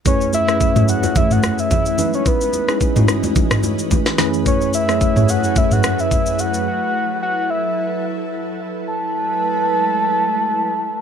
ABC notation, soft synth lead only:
X:1
M:4/4
L:1/16
Q:"Swing 16ths" 1/4=109
K:F#dor
V:1 name="Soft synth lead"
c2 e4 f2 e f2 e e e2 c | B6 z8 z2 | c2 e4 f2 e f2 e3 f2 | f4 f2 e4 z6 |
a16 |]